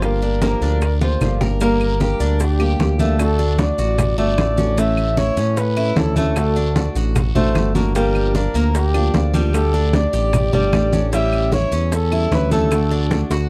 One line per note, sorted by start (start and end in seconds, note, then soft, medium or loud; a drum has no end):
0.00 0.56 G1 medium
0.00 0.21 D3 medium
0.00 0.21 F3 medium
0.00 0.22 A#3 medium
0.00 0.22 D4 medium
0.00 0.21 F4 medium
0.00 0.21 G4 medium
0.00 0.98 A#4 medium
0.00 high bongo medium
0.00 high conga soft
0.00 long guiro medium
0.00 claves medium
0.00 maracas medium
0.22 0.42 A#3 soft
0.22 0.41 D4 medium
0.22 0.42 D4 soft
0.22 high bongo soft
0.22 high conga soft
0.22 maracas soft
0.42 0.80 D3 medium
0.42 0.80 F3 medium
0.42 0.61 A#3 medium
0.42 0.80 A#3 medium
0.42 0.81 D4 medium
0.42 0.81 G4 medium
0.42 high bongo medium
0.42 high conga medium
0.42 short guiro medium
0.42 maracas medium
0.61 1.17 D2 loud
0.61 1.00 D4 medium
0.61 high bongo soft
0.61 high conga soft
0.61 short guiro medium
0.61 maracas soft
0.81 muted nylon-string guitar stroke medium
0.81 high bongo medium
0.81 high conga soft
0.81 long guiro medium
0.81 claves medium
0.81 maracas medium
1.01 1.20 A#3 soft
1.01 1.21 D4 soft
1.01 1.40 F4 medium
1.01 1.20 G4 soft
1.01 1.39 C5 medium
1.01 high bongo soft
1.01 high conga medium
1.01 maracas soft
1.21 2.14 G1 medium
1.21 1.40 D3 medium
1.21 1.40 F3 medium
1.21 1.40 A#3 medium
1.21 1.41 D4 medium
1.21 1.39 G4 medium
1.21 high bongo soft
1.21 low bongo medium
1.21 low conga medium
1.21 short guiro medium
1.21 claves medium
1.21 maracas medium
1.41 1.60 A#3 soft
1.41 1.60 D4 soft
1.41 1.60 G4 soft
1.41 1.60 A#4 medium
1.41 low conga medium
1.41 short guiro medium
1.41 maracas soft
1.60 1.99 D3 medium
1.60 1.99 G3 medium
1.60 1.99 A#3 medium
1.60 2.00 D4 medium
1.60 2.00 G4 medium
1.60 1.99 A#4 medium
1.60 high bongo medium
1.60 high conga soft
1.60 long guiro medium
1.60 maracas medium
1.80 high conga soft
1.80 claves medium
1.80 maracas soft
2.00 2.38 G3 soft
2.00 2.39 A#3 medium
2.00 2.39 D4 soft
2.00 2.20 G4 medium
2.00 2.40 G4 medium
2.00 2.39 A#4 medium
2.00 high bongo medium
2.00 high conga medium
2.00 short guiro medium
2.00 maracas soft
2.20 2.75 D2 loud
2.20 2.59 D4 medium
2.20 short guiro medium
2.20 maracas medium
2.40 2.96 G4 medium
2.40 muted nylon-string guitar stroke medium
2.40 high bongo medium
2.40 high conga soft
2.40 long guiro medium
2.40 maracas medium
2.59 2.78 G3 medium
2.59 2.79 A#3 medium
2.59 2.79 D4 medium
2.59 2.78 G4 medium
2.59 2.98 G4 medium
2.59 high conga soft
2.59 claves medium
2.59 maracas soft
2.79 3.72 D2 medium
2.79 2.98 G3 soft
2.79 2.99 A#3 medium
2.79 2.98 D4 soft
2.79 2.97 G4 medium
2.79 high bongo medium
2.79 low bongo medium
2.79 high conga medium
2.79 short guiro medium
2.79 maracas soft
2.99 3.19 G3 medium
2.99 3.38 A3 medium
2.99 3.19 A#3 medium
2.99 3.18 D4 medium
2.99 3.18 G4 medium
2.99 high conga medium
2.99 short guiro medium
2.99 maracas medium
3.19 3.58 D3 medium
3.19 3.58 A3 medium
3.19 3.59 D4 medium
3.19 3.59 F#4 medium
3.19 3.62 A4 loud
3.19 high bongo medium
3.19 high conga soft
3.19 long guiro medium
3.19 claves medium
3.19 maracas medium
3.39 3.77 D4 medium
3.39 high bongo soft
3.39 high conga soft
3.39 maracas soft
3.58 3.97 D3 soft
3.58 3.97 A3 medium
3.58 3.97 D4 medium
3.58 3.98 F#4 medium
3.58 4.18 D5 loud
3.58 high bongo medium
3.58 high conga medium
3.58 short guiro medium
3.58 maracas soft
3.78 4.15 A1 loud
3.78 4.17 F#4 medium
3.78 high conga soft
3.78 short guiro medium
3.78 maracas medium
3.98 muted nylon-string guitar stroke medium
3.98 high bongo medium
3.98 high conga soft
3.98 low conga medium
3.98 long guiro medium
3.98 claves medium
3.98 maracas medium
4.17 4.36 G1 medium
4.17 4.57 A3 medium
4.17 4.37 A3 medium
4.17 4.37 D4 medium
4.17 4.37 F#4 medium
4.17 4.81 D5 loud
4.17 high bongo soft
4.17 high conga soft
4.17 maracas soft
4.37 5.31 A1 medium
4.37 4.57 D3 medium
4.37 4.57 A3 medium
4.37 4.57 D4 medium
4.37 4.56 F#4 medium
4.37 high bongo medium
4.37 low bongo medium
4.37 high conga medium
4.37 short guiro medium
4.37 claves medium
4.37 maracas soft
4.57 4.76 A3 medium
4.57 4.77 C#4 medium
4.57 4.77 D4 medium
4.57 4.77 F#4 medium
4.57 high bongo soft
4.57 high conga medium
4.57 short guiro medium
4.57 maracas medium
4.77 5.16 E3 medium
4.77 5.16 A3 medium
4.77 5.17 C#4 medium
4.77 5.17 E4 medium
4.77 5.20 E5 loud
4.77 high bongo medium
4.77 high conga soft
4.77 long guiro medium
4.77 maracas medium
4.97 high conga soft
4.97 claves medium
4.97 maracas soft
5.17 5.56 E3 soft
5.17 5.56 A3 medium
5.17 5.56 C#4 medium
5.17 5.37 E4 medium
5.17 5.57 E4 medium
5.17 5.59 C#5 loud
5.17 high bongo medium
5.17 high conga medium
5.17 short guiro medium
5.17 maracas soft
5.36 5.92 A2 medium
5.36 5.76 C#4 medium
5.36 short guiro medium
5.36 maracas medium
5.56 5.99 B4 loud
5.56 muted nylon-string guitar stroke medium
5.56 high bongo medium
5.56 high conga soft
5.56 long guiro medium
5.56 maracas medium
5.77 5.96 A3 medium
5.77 5.96 C#4 medium
5.77 6.15 E4 medium
5.77 5.96 E4 medium
5.77 high conga soft
5.77 claves medium
5.77 maracas soft
5.96 6.89 D2 medium
5.96 6.15 E3 medium
5.96 6.16 A3 medium
5.96 6.16 C#4 medium
5.96 6.15 E4 medium
5.96 6.17 A4 loud
5.96 high bongo medium
5.96 low bongo medium
5.96 high conga medium
5.96 short guiro medium
5.96 maracas soft
6.16 6.55 A3 medium
6.16 6.36 A3 medium
6.16 6.36 C#4 medium
6.16 6.35 E4 medium
6.16 6.92 A4 medium
6.16 high conga medium
6.16 short guiro medium
6.16 maracas medium
6.36 6.75 D3 medium
6.36 6.75 A3 medium
6.36 6.76 D4 medium
6.36 6.76 F#4 medium
6.36 high bongo medium
6.36 high conga soft
6.36 long guiro medium
6.36 claves medium
6.36 maracas medium
6.56 6.95 D4 medium
6.56 high bongo soft
6.56 high conga soft
6.56 maracas soft
6.76 7.14 D3 soft
6.76 7.15 A3 soft
6.76 7.15 D4 medium
6.76 7.15 F#4 medium
6.76 high bongo medium
6.76 high conga medium
6.76 short guiro medium
6.76 maracas soft
6.95 7.32 A1 medium
6.95 7.34 F#4 medium
6.95 high conga soft
6.95 short guiro medium
6.95 maracas medium
7.15 muted nylon-string guitar stroke medium
7.15 high bongo medium
7.15 high conga soft
7.15 low conga medium
7.15 long guiro medium
7.15 claves medium
7.15 maracas medium
7.35 7.54 A1 medium
7.35 7.74 A3 medium
7.35 7.54 A3 medium
7.35 7.55 D4 medium
7.35 7.54 F#4 medium
7.35 7.73 C5 medium
7.35 high bongo soft
7.35 high conga soft
7.35 low conga medium
7.35 maracas soft
7.54 8.48 G1 medium
7.54 7.74 D3 soft
7.54 7.74 A3 medium
7.54 7.74 D4 medium
7.54 7.73 F#4 medium
7.54 high bongo medium
7.54 low bongo medium
7.54 high conga medium
7.54 short guiro medium
7.54 claves medium
7.54 maracas soft
7.75 7.95 A3 medium
7.75 7.94 A#3 medium
7.75 7.94 D4 medium
7.75 7.94 F#4 medium
7.75 high bongo soft
7.75 high conga medium
7.75 short guiro medium
7.75 maracas medium
7.95 8.34 D3 medium
7.95 8.33 F3 medium
7.95 8.34 G3 medium
7.95 8.34 A#3 medium
7.95 8.34 D4 medium
7.95 8.35 G4 medium
7.95 8.32 A#4 medium
7.95 high bongo medium
7.95 high conga soft
7.95 long guiro medium
7.95 maracas medium
8.15 high conga soft
8.15 claves medium
8.15 maracas soft
8.34 8.73 F3 soft
8.34 8.73 A#3 medium
8.34 8.54 D4 medium
8.34 8.73 D4 medium
8.34 8.73 G4 medium
8.34 8.72 A#4 medium
8.34 high bongo medium
8.34 high conga medium
8.34 short guiro medium
8.34 maracas soft
8.54 9.10 D2 medium
8.54 8.93 A#3 medium
8.54 short guiro medium
8.54 maracas medium
8.74 9.31 G4 medium
8.74 muted nylon-string guitar stroke medium
8.74 high bongo medium
8.74 high conga soft
8.74 long guiro medium
8.74 maracas medium
8.94 9.13 F3 medium
8.94 9.13 A#3 medium
8.94 9.33 D4 medium
8.94 9.14 D4 medium
8.94 9.13 G4 medium
8.94 high conga soft
8.94 claves medium
8.94 maracas soft
9.14 10.07 D2 medium
9.14 9.33 F3 medium
9.14 9.33 A#3 medium
9.14 9.33 D4 medium
9.14 9.32 G4 medium
9.14 high bongo medium
9.14 low bongo medium
9.14 high conga medium
9.14 short guiro medium
9.14 maracas soft
9.34 9.53 F3 medium
9.34 9.72 G3 medium
9.34 9.53 A#3 medium
9.34 9.53 D4 medium
9.34 9.53 G4 medium
9.34 high conga medium
9.34 short guiro medium
9.34 maracas medium
9.53 9.92 D3 medium
9.53 9.92 A3 medium
9.53 9.93 D4 medium
9.53 9.93 G4 medium
9.53 9.96 A4 loud
9.53 high bongo medium
9.53 high conga soft
9.53 long guiro medium
9.53 claves medium
9.53 maracas medium
9.74 10.12 D4 medium
9.74 high bongo soft
9.74 high conga soft
9.74 maracas soft
9.93 10.32 D3 soft
9.93 10.32 A3 medium
9.93 10.32 D4 medium
9.93 10.32 G4 medium
9.93 10.54 D5 loud
9.93 high bongo medium
9.93 high conga loud
9.93 short guiro medium
9.93 maracas soft
10.13 10.50 A1 medium
10.13 10.52 G4 medium
10.13 high conga soft
10.13 short guiro medium
10.13 maracas medium
10.33 muted nylon-string guitar stroke medium
10.33 high bongo medium
10.33 high conga soft
10.33 low conga medium
10.33 long guiro medium
10.33 claves medium
10.33 maracas medium
10.52 10.71 G1 medium
10.52 10.92 G3 medium
10.52 10.73 A3 medium
10.52 10.72 D4 medium
10.52 10.72 G4 medium
10.52 11.09 D5 loud
10.52 high bongo soft
10.52 high conga soft
10.52 low conga medium
10.52 maracas soft
10.72 11.66 A1 medium
10.72 10.92 D3 soft
10.72 10.92 A3 medium
10.72 10.92 D4 medium
10.72 10.91 G4 medium
10.72 high bongo medium
10.72 low bongo medium
10.72 high conga medium
10.72 short guiro medium
10.72 claves medium
10.72 maracas soft
10.92 11.12 A3 medium
10.92 11.12 C#4 medium
10.92 11.12 D4 medium
10.92 11.12 G4 medium
10.92 high bongo soft
10.92 high conga medium
10.92 short guiro medium
10.92 maracas medium
11.12 11.51 E3 medium
11.12 11.51 G3 medium
11.12 11.52 G3 medium
11.12 11.52 C#4 medium
11.12 11.52 E4 medium
11.12 11.51 E5 loud
11.12 high bongo medium
11.12 high conga soft
11.12 long guiro medium
11.12 maracas medium
11.32 high conga soft
11.32 claves medium
11.32 maracas soft
11.52 11.90 E3 medium
11.52 11.91 G3 medium
11.52 11.91 C#4 medium
11.52 11.72 E4 medium
11.52 11.92 E4 medium
11.52 11.95 C#5 loud
11.52 high bongo medium
11.52 high conga medium
11.52 short guiro medium
11.52 maracas soft
11.72 12.27 E2 loud
11.72 12.11 C#4 medium
11.72 short guiro medium
11.72 maracas medium
11.91 12.32 A4 loud
11.91 muted nylon-string guitar stroke medium
11.91 high bongo medium
11.91 high conga soft
11.91 long guiro medium
11.91 maracas medium
12.11 12.31 G3 medium
12.11 12.31 C#4 medium
12.11 12.31 E4 medium
12.11 12.50 E4 medium
12.11 high conga soft
12.11 claves medium
12.11 maracas soft
12.31 13.25 D2 loud
12.31 12.51 E3 medium
12.31 12.51 G3 medium
12.31 12.51 C#4 medium
12.31 12.50 E4 medium
12.31 12.51 B4 loud
12.31 high bongo medium
12.31 low bongo medium
12.31 high conga medium
12.31 short guiro medium
12.31 maracas soft
12.51 12.71 G3 medium
12.51 12.90 A3 medium
12.51 12.71 C#4 medium
12.51 12.70 E4 medium
12.51 13.27 A4 loud
12.51 high conga medium
12.51 short guiro medium
12.51 maracas medium
12.71 13.10 D3 medium
12.71 13.10 A3 medium
12.71 13.11 D4 medium
12.71 13.11 F#4 medium
12.71 high bongo medium
12.71 high conga soft
12.71 long guiro medium
12.71 claves medium
12.71 maracas medium
12.91 13.30 D4 medium
12.91 high bongo soft
12.91 high conga soft
12.91 maracas soft
13.11 13.49 D3 medium
13.11 13.49 A3 soft
13.11 13.49 D4 medium
13.11 13.49 F#4 medium
13.11 high bongo medium
13.11 high conga medium
13.11 short guiro medium
13.11 maracas soft
13.30 13.49 D2 loud
13.30 13.49 F#4 medium
13.30 high bongo loud
13.30 high conga soft
13.30 short guiro medium
13.30 maracas medium